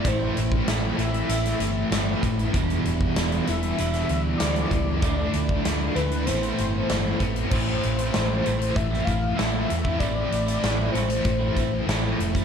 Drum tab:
CC |----------------|----------------|----------------|x---------------|
HH |x-x-x-xxxxx-x-xx|xxx-xxxxxxx-xxx-|x-x-x-xxxxx-x-xx|--xxx-xxx-x-x-x-|
SD |----o----o--o---|----o----o--o---|----o-------o---|----o----o--o---|
BD |o--o----------o-|o--o----------o-|o--o----------o-|o-------o-o----o|

CC |----------------|
HH |x-xxx-xxx-x-x-xx|
SD |----o-------o---|
BD |o-------o-o----o|